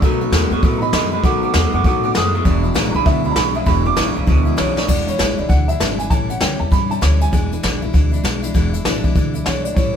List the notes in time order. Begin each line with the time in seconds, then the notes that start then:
0.02 B1 B2 D#3 F#3 A3 B3 F#4, kick, open hi-hat
0.21 A3 B3 F#4
0.31 E2 B2 D#3 G#3 A3 B3 F#4, snare, open hi-hat
0.51 F#2 B2 G#3 A3 B3 F#4
0.63 A2 B2 D#3 F#3 A3 B3 F#4, kick, open hi-hat
0.78 F#4 D#5 A#5
0.82 A3 B3 B5
0.93 F#2 B2 D#3 G#3 A3 B3 F#4 D#5 B5, snare, open hi-hat
1.12 B2 G#3 A3 B3 F#4 D#5 B5
1.23 B1 B2 D#3 F#3 A3 B3 F#4 F#5 D6, kick, open hi-hat
1.43 A3 B3 F#4 F#5 D6
1.54 E2 B2 D#3 G#3 A3 B3 F#4 F#5 D6, snare, open hi-hat
1.73 F#2 B2 G#3 A3 B3 F#4 F#5 D6
1.84 A2 B2 D#3 F#3 A3 B3 F#4 F#5 D6, kick, open hi-hat
2.03 A3 B3 F#4 F#5 D6
2.12 F#2 B2 D#3 A3 D6, snare, open hi-hat
2.16 G#3 B3 F#4 D#6
2.34 B2 G#3 A3 B3 F#4
2.45 E1 E2 B2 E3 G#3 D4 E4, kick, open hi-hat
2.63 E3 G#3 D4 E4
2.74 A1 E2 B2 C#3 E3 G#3 D4 E4, snare, open hi-hat
2.91 B1 E2 D4 E4 A#5
2.96 C#3 E3 G#3 B5
3.05 D2 E2 B2 E3 G#3 D4 E4 E5, kick, open hi-hat
3.24 E3 G#3 D4 E4 B5
3.31 A#5
3.36 B1 E2 B2 C#3 E3 G#3 D4 E4 B5, snare, open hi-hat
3.55 E2 C#3 E3 G#3 D4 E4 E5
3.66 E1 E2 B2 E3 G#3 D4 E4 B5, kick, open hi-hat
3.85 E3 G#3 D4 E4 D6
3.96 A1 E2 B2 C#3 E3 G#3 D4 E4, snare, open hi-hat
4.16 B1 E2 C#3 E3 G#3 D4 E4
4.27 D2 E2 B2 E3 G#3 D4 E4, kick, open hi-hat
4.45 E3 G#3 D4 E4
4.57 B1 E2 B2 C#3 E3 G#3 D4 E4 C#5, snare, open hi-hat
4.76 E2 C#3 E3 G#3 D4 E4 D5, snare
4.87 E1 E2 B2 E3 G#3 D4 E4 D5, kick, crash
5.07 E3 G#3 D4 E4 C#5, closed hi-hat
5.18 A1 E2 B2 E3 G#3 D4 E4, snare, closed hi-hat
5.37 B1 E3 G#3 D4 E4 D5
5.49 D2 E3 G#3 D4 E4 F#5, kick, closed hi-hat
5.68 E3 G#3 D4 E4 E5, closed hi-hat
5.80 G#1 E2 B2 E3 G#3 D4 E4, snare, closed hi-hat
5.98 E3 G#3 D4 E4 G#5, closed hi-hat
6.10 A1 A2 E3 G3 C#4 E4 A5, kick, closed hi-hat
6.29 G3 C#4 E4 F#5, closed hi-hat
6.40 D2 A2 E3 G3 C#4 E4 G5, snare, closed hi-hat
6.59 E2 G3 C#4 E4 A5
6.71 G2 E3 G3 C#4 E4 B5, kick, closed hi-hat
6.90 G3 C#4 E4 A5, closed hi-hat
7.01 D2 A2 E3 G3 C#4 E4, snare, closed hi-hat
7.20 G3 C#4 E4 G#5, closed hi-hat
7.32 E1 E2 B2 E3 G#3 D4 E4, kick, closed hi-hat
7.51 E3 G#3 D4 E4, closed hi-hat
7.63 A1 E2 B2 E3 G#3 D4 E4, snare, closed hi-hat
7.82 B1 E3 G#3 D4 E4
7.93 D2 E3 G#3 D4 E4, kick, closed hi-hat
8.12 E3 G#3 D4 E4, closed hi-hat
8.23 B1 E2 B2 E3 G#3 D4 E4, snare, closed hi-hat
8.42 E3 G#3 D4 E4, closed hi-hat
8.54 E1 E2 B2 E3 G#3 D4 E4, kick, closed hi-hat
8.73 E3 G#3 D4 E4, closed hi-hat
8.85 A1 E2 B2 E3 G#3 D4 E4, snare, closed hi-hat
9.04 B1 E3 G#3 D4 E4, kick
9.15 D2 E3 G#3 D4 E4, kick, closed hi-hat
9.34 E3 G#3 D4 E4, closed hi-hat
9.44 B1 E2 B2 E3 G#3 D4 E4 C#5, snare, closed hi-hat
9.63 G#3 D4 E4 D5, closed hi-hat
9.68 E3
9.74 A1 A2 E3 G3 C#4 C#5, kick, closed hi-hat
9.79 E4
9.93 B4